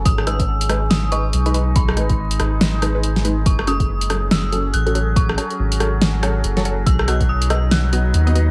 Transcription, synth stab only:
X:1
M:4/4
L:1/16
Q:"Swing 16ths" 1/4=141
K:F#dor
V:1 name="Synth stab"
z2 [G,DB]2 z2 [G,DB] z3 [G,DB]2 z [G,DB] [G,DB] z | z2 [G,DB]2 z2 [G,DB] z3 [G,DB] [G,DB]2 z [G,DB]2 | z2 [F,CA]2 z2 [F,CA] z3 [F,CA]2 z [F,CA] [F,CA] z | z2 [F,CA]2 z2 [F,CA] z3 [F,CA]2 z [F,CA] [F,CA] z |
z2 [B,Fd]2 z2 [B,Fd] z3 [B,Fd]2 z [B,Fd] [B,Fd] z |]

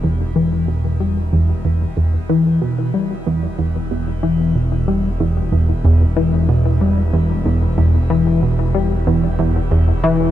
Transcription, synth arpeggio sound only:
X:1
M:4/4
L:1/8
Q:1/4=93
K:Em
V:1 name="Synth arpeggio sound" clef=bass
E,, E, B,, G, E,, E,, E,, E, | B,, G, E,, E,, E,, E, B,, G, | E,, E,, E,, E, B,, G, E,, E,, | E,, E, B,, G, E,, E,, E,, E, |]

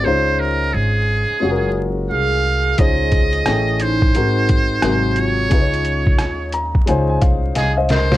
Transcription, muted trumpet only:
X:1
M:4/4
L:1/8
Q:"Swing 16ths" 1/4=88
K:Db
V:1 name="Muted trumpet"
c B A3 z f2 | e3 c4 d- | d3 z3 A c |]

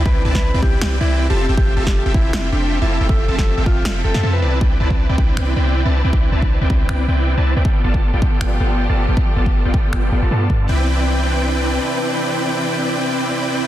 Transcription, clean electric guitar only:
X:1
M:4/4
L:1/16
Q:"Swing 16ths" 1/4=158
K:C
V:1 name="Clean electric guitar"
B3 B3 G4 E3 G3 | G3 G3 E4 D3 E3 | A3 A3 F4 A3 B3 | z16 |
z16 | z16 | z16 | z16 |
z16 |]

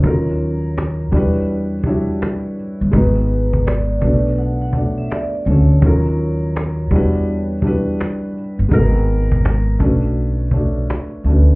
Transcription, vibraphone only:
X:1
M:4/4
L:1/16
Q:"Swing 16ths" 1/4=83
K:G#m
V:1 name="Vibraphone"
c8- c2 z6 | B4 =d4 f f2 e d2 c2- | c8- c2 z6 | z16 |]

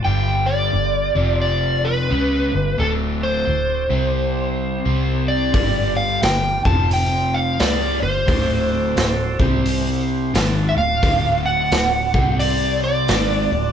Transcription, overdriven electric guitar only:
X:1
M:4/4
L:1/8
Q:"Swing" 1/4=88
K:Clyd
V:1 name="Overdriven electric guitar" clef=bass
[G,,D,G,]2 [G,,D,] [=F,,C,=F,]3 [^C,^G,^C] [=G,,D,] | [D,,A,,D,]2 [D,,A,,] [C,G,C]3 [C,G,C]2 | [G,,D,G,]2 [G,,D,] [=F,,C,=F,]3 [^C,^G,^C] [=G,,D,] | [D,,A,,D,]2 [D,,A,,] [C,G,C]3 [^G,,_E,^G,] [D,,A,,] |
[D,,A,,D,]2 [D,,A,,] [C,G,C]3 [^G,,_E,^G,] [D,,A,,] |]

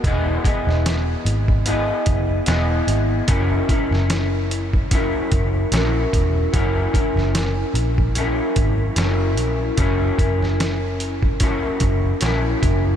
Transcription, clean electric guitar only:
X:1
M:4/4
L:1/8
Q:"Swing 16ths" 1/4=74
K:F#mix
V:1 name="Clean electric guitar"
[E,G,B,EGd] [B,EGd]3 [B,EGd]2 [B,EGd]2 | [F,CEA] [CEA]3 [F,CEA]2 [F,CEA]2 | [F,CEA] [CEA]3 [F,CEA]2 [F,CEA]2 | [F,CEA] [CEA]3 [F,CEA]2 [F,CEA]2 |]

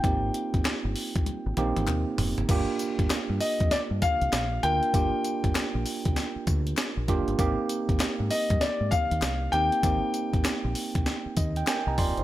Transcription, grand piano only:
X:1
M:4/4
L:1/8
Q:"Swing 16ths" 1/4=98
K:Gphr
V:1 name="Grand piano"
g6 z2 | z3 e d f2 g- | g4- g z3 | z3 e d f2 g- |
g4- g z3 |]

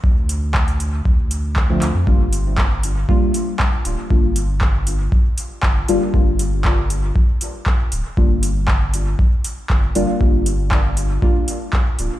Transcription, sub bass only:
X:1
M:4/4
L:1/16
Q:1/4=118
K:Gdor
V:1 name="Sub bass" clef=bass
D,,8 D,,6 D,, F,, | G,,,8 z6 D,,, z | G,,,8 z4 G,,,2 G,,, z | G,,,8 z6 D,,, z |
G,,,8 z4 G,,,2 G,,, z | G,,,8 z6 D,,, z |]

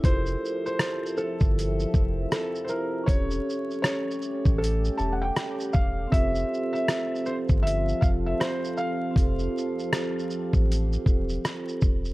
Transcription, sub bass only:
X:1
M:4/4
L:1/16
Q:"Swing 16ths" 1/4=79
K:F
V:1 name="Sub bass" clef=bass
F,,,2 z4 z G,,,3 F,,,2 z4 | E,,,2 z4 z A,,,3 E,,,2 z2 E,,,2 | F,,,2 z4 z G,,,3 F,,,2 z4 | F,,,2 z4 z A,,,3 E,,,2 z2 E,,,2 |]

